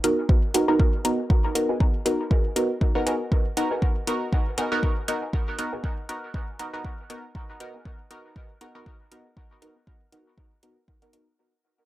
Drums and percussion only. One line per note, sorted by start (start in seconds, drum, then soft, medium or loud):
0.04 closed hi-hat medium
0.29 kick loud
0.54 closed hi-hat medium
0.80 kick loud
1.05 closed hi-hat medium
1.30 kick loud
1.55 closed hi-hat medium
1.80 kick loud
2.06 closed hi-hat medium
2.31 kick loud
2.56 closed hi-hat medium
2.81 kick loud
3.07 closed hi-hat medium
3.32 kick loud
3.57 closed hi-hat medium
3.82 kick loud
4.07 closed hi-hat medium
4.33 kick loud
4.58 closed hi-hat medium
4.83 kick loud
5.08 closed hi-hat medium
5.33 kick loud
5.59 closed hi-hat medium
5.84 kick medium
6.09 closed hi-hat medium
6.34 kick loud
6.59 closed hi-hat medium
6.85 kick medium
7.10 closed hi-hat medium
7.35 kick loud
7.60 closed hi-hat medium
7.85 kick loud
8.11 closed hi-hat medium
8.36 kick loud
8.61 closed hi-hat medium
8.86 kick loud
9.12 closed hi-hat medium
9.37 kick loud
9.62 closed hi-hat medium
9.87 kick medium
10.12 closed hi-hat medium
10.38 kick loud
10.63 closed hi-hat medium
10.88 kick medium
11.02 closed hi-hat soft
11.13 closed hi-hat medium